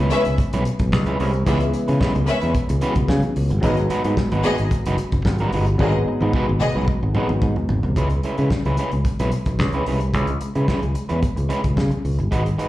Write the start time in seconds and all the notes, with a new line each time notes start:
Already playing: E3 B3 C#4 G#4
0.00 G#3 C#4 E4 B4
0.11 G#3 C#4 E4 B4 E5, closed hi-hat
0.25 C#2, muted clean electric guitar stroke, closed hi-hat
0.38 muted clean electric guitar stroke, kick, closed hi-hat
0.53 B1 G#3 C#4 E4 B4, closed hi-hat
0.65 muted clean electric guitar stroke, closed hi-hat
0.79 B1, muted clean electric guitar stroke, kick, closed hi-hat
0.92 C#2, muted clean electric guitar stroke, kick, snare
1.06 G#3 C#4 E4 B4, closed hi-hat
1.19 C2 G#3 C#4 E4 B4, open hi-hat
1.34 muted clean electric guitar stroke, closed hi-hat
1.46 C#2 E3 G#3 B3 C#4 E4 G#4 B4 E5, kick, closed hi-hat
1.60 muted clean electric guitar stroke, closed hi-hat
1.73 muted clean electric guitar stroke, closed hi-hat
1.88 C#3 G#3 C#4 E4 B4, closed hi-hat
2.00 G#3 C#4 E4 B4, kick, snare
2.15 C#2, muted clean electric guitar stroke, closed hi-hat
2.28 C#4 B4 E5, muted clean electric guitar stroke, closed hi-hat
2.41 E2 G#3 C#4 E4 B4, closed hi-hat
2.54 muted clean electric guitar stroke, kick, closed hi-hat
2.69 C#2, muted clean electric guitar stroke, closed hi-hat
2.81 E3 G#3 B3 C#4 E4 F#4 B4, closed hi-hat
2.89 G#4
2.95 C#2, muted clean electric guitar stroke, kick, closed hi-hat
3.08 C#3, muted clean electric guitar stroke, kick, snare
3.22 muted clean electric guitar stroke, closed hi-hat
3.36 C#2, open hi-hat
3.50 G1, muted clean electric guitar stroke, closed hi-hat
3.61 G#1 F#3 G#3 B3 D#4 F#4 G#4 B4 D#5, kick, closed hi-hat
3.77 muted clean electric guitar stroke, closed hi-hat
3.90 G#3 D#4 F#4 B4, closed hi-hat
4.04 G#2 G#3 D#4 F#4 B4, closed hi-hat
4.17 muted clean electric guitar stroke, kick, snare
4.32 G#1 G#3 D#4 F#4 B4, closed hi-hat
4.44 G#3 B3 D#4 F#4 G#4 B4 D#5, closed hi-hat
4.58 G#1, muted clean electric guitar stroke, closed hi-hat
4.71 muted clean electric guitar stroke, kick, closed hi-hat
4.86 F#1 G#3 D#4 F#4 B4, closed hi-hat
4.98 closed hi-hat
5.12 F#1, muted clean electric guitar stroke, kick, closed hi-hat
5.25 G#1, muted clean electric guitar stroke, kick, snare
5.38 G#3 D#4 F#4 B4, closed hi-hat
5.52 G1 G#3 D#4 F#4 B4, open hi-hat
5.66 muted clean electric guitar stroke, closed hi-hat
5.78 G#1 F#3 G#3 B3 D#4 F#4 G#4 B4 D#5, kick, high tom
5.95 muted clean electric guitar stroke
6.08 muted clean electric guitar stroke
6.21 G#2 G#3 D#4 F#4 B4, high tom
6.33 G#3 D#4 F#4 B4, kick, mid tom
6.49 G#1, muted clean electric guitar stroke
6.60 B3 G#4 D#5, muted clean electric guitar stroke, mid tom
6.75 B1 G#3 D#4 F#4 B4, mid tom
6.88 muted clean electric guitar stroke, kick
7.03 G#1, muted clean electric guitar stroke
7.15 F#3 G#3 B3 D#4 F#4 G#4 B4, mid tom
7.29 G#1, muted clean electric guitar stroke, mid tom
7.42 G#2, muted clean electric guitar stroke, kick
7.56 muted clean electric guitar stroke, floor tom
7.69 G#1, floor tom
7.83 C2, muted clean electric guitar stroke, floor tom
7.96 C#2 G#3 C#4 E4 B4, kick, closed hi-hat
8.10 muted clean electric guitar stroke, closed hi-hat
8.23 G#3 C#4 E4 B4, closed hi-hat
8.38 C#3 G#3 C#4 E4 B4, closed hi-hat
8.50 kick, snare
8.65 C#2 G#3 C#4 E4 B4, closed hi-hat
8.77 G#3 C#4 E4 B4, closed hi-hat
8.92 C#2, muted clean electric guitar stroke, closed hi-hat
9.05 muted clean electric guitar stroke, kick, closed hi-hat
9.19 B1 G#3 C#4 E4 B4, closed hi-hat
9.32 muted clean electric guitar stroke, closed hi-hat
9.46 B1, muted clean electric guitar stroke, kick, closed hi-hat
9.59 C#2, muted clean electric guitar stroke, kick, snare
9.72 G#3 C#4 E4 B4, closed hi-hat
9.86 C2 G#3 C#4 E4 B4, open hi-hat
10.01 closed hi-hat
10.13 C#2 G#3 C#4 E4 B4, kick, closed hi-hat
10.27 muted clean electric guitar stroke, closed hi-hat
10.41 muted clean electric guitar stroke, closed hi-hat
10.55 C#3 G#3 C#4 E4 B4, closed hi-hat
10.68 G#3 C#4 E4 B4, kick, snare
10.82 C#2, muted clean electric guitar stroke, closed hi-hat
10.95 muted clean electric guitar stroke, closed hi-hat
11.09 E2 G#3 C#4 E4 B4, closed hi-hat
11.22 muted clean electric guitar stroke, kick, closed hi-hat
11.37 C#2, muted clean electric guitar stroke, closed hi-hat
11.49 G#3 C#4 E4 B4, closed hi-hat
11.63 C#2, muted clean electric guitar stroke, kick, closed hi-hat
11.77 C#3, muted clean electric guitar stroke, kick, snare
11.90 muted clean electric guitar stroke, closed hi-hat
12.05 C#2, open hi-hat
12.19 G1, muted clean electric guitar stroke, closed hi-hat
12.31 G#1 G#3 D#4 F#4 B4, kick, closed hi-hat
12.45 muted clean electric guitar stroke, closed hi-hat
12.58 G#3 D#4 F#4 B4, closed hi-hat